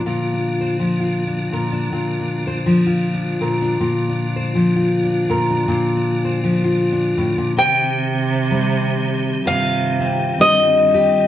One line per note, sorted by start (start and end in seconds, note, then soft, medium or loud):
0.00 0.78 F3 medium
0.06 1.52 A#2 medium
0.06 7.54 D3 medium
0.06 7.54 A#3 medium
0.06 7.54 F4 medium
0.06 0.99 F4 medium
0.33 1.27 D4 medium
0.61 1.53 C5 medium
0.80 2.65 F3 medium
1.00 1.92 F4 medium
1.27 1.72 D4 medium
1.52 1.92 A#2 medium
1.52 2.47 A#4 medium
1.72 2.18 D4 medium
1.92 3.40 A#2 medium
1.92 2.85 F4 medium
2.20 3.12 D4 medium
2.47 3.41 C5 medium
2.66 4.54 F3 medium
2.86 3.76 F4 medium
3.14 3.61 D4 medium
3.41 3.76 A#2 medium
3.41 3.76 A#4 medium
3.62 3.77 D4 medium
3.81 5.28 A#2 medium
3.81 4.75 F4 medium
4.09 5.02 D4 medium
4.36 5.30 C5 medium
4.55 6.43 F3 medium
4.76 5.68 F4 medium
5.03 5.49 D4 medium
5.30 5.67 A#2 medium
5.30 6.24 A#4 medium
5.50 5.96 D4 medium
5.68 7.17 A#2 medium
5.68 6.63 F4 medium
5.97 6.91 D4 medium
6.25 7.53 C5 medium
6.44 7.57 F3 medium
6.64 7.53 F4 medium
6.92 7.53 D4 medium
7.18 7.37 A2 medium
7.38 7.57 A#2 medium
7.57 9.45 C3 medium
7.57 9.41 C3 loud
7.57 11.27 D#3 medium
7.57 11.27 C4 medium
7.57 9.43 G4 medium
7.57 9.47 G5 loud
8.51 10.38 G3 medium
9.45 11.27 G2 medium
9.45 10.35 C3 medium
9.45 11.27 F4 medium
9.45 10.41 F5 loud
10.00 11.27 C4 medium
10.39 11.27 G2 medium
10.39 11.27 G3 medium
10.39 11.27 D#5 loud
10.94 11.27 G4 medium